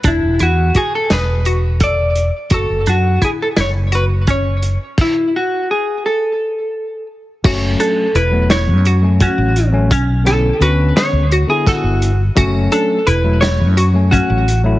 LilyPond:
<<
  \new Staff \with { instrumentName = "Hollow-body jazz guitar" } { \time 7/8 \key fis \minor \tempo 4 = 85 e'8 fis'8 gis'16 a'16 b'4 d''8. r16 | a'8 fis'8 gis'16 a'16 cis''8 b'8 cis''8. r16 | e'8 fis'8 gis'8 a'4. r8 | r8 a'8 b'8 cis''4 fis'8. r16 |
r8 a'8 b'8 cis''8. gis'16 fis'8. r16 | r8 a'8 b'8 cis''4 fis'8. r16 | }
  \new Staff \with { instrumentName = "Synth arpeggio sound" } { \time 7/8 \key fis \minor d'8 e'8 fis'8 gis'8 fis'8 a'4 | fis'8 d'8 e'8 e'8 fis'8 cis'4 | r2. r8 | fis'8 d'8 e'8 e'8 fis'8 cis'4 |
cis'8 e'8 fis'8 gis'8 fis'8 a'4 | fis'8 d'8 e'8 e'8 fis'8 cis'4 | }
  \new Staff \with { instrumentName = "Tine electric piano" } { \time 7/8 \key fis \minor r2. r8 | r2. r8 | r2. r8 | <fis a cis'>8. r8 <fis a b>8. r16 <fis a cis'>8. r16 <fis a cis'>16 |
r8 <d b cis'>16 r16 <d b cis'>8. r8 <d b e'>8. r8 | <fis a cis'>8. r8 <fis a e'>8. r16 <fis a cis'>8. r16 <fis a e'>16 | }
  \new Staff \with { instrumentName = "Fretless electric bass" } { \clef bass \time 7/8 \key fis \minor e,,16 e,,16 e,8 r8 e,,2 | fis,,16 fis,,16 fis,8 r8 fis,,2 | r2. r8 | fis,,8 r8 e,,8. fis,4 a,,8. |
b,,4 d,8 r16 d,8 r8 g,,8. | fis,,8 r8 e,,8. fis,4 a,,8. | }
  \new DrumStaff \with { instrumentName = "Drums" } \drummode { \time 7/8 <hh bd>8 hh8 <hh bd>8 <hh sn>8 hh8 <hh bd>8 hh8 | <hh bd>8 hh8 <hh bd>8 <hh sn>8 hh8 <hh bd>8 hh8 | <cymc bd>4. r4 r4 | <cymc bd>8 hh8 hh8 <hh sn>8 hh8 <hh bd>8 hh8 |
<hh bd>8 <hh sn>8 hh8 <hh sn>8 hh8 <hh bd sn>8 hh8 | <hh bd>8 hh8 hh8 <hh sn>8 hh8 <hh bd>8 hh8 | }
>>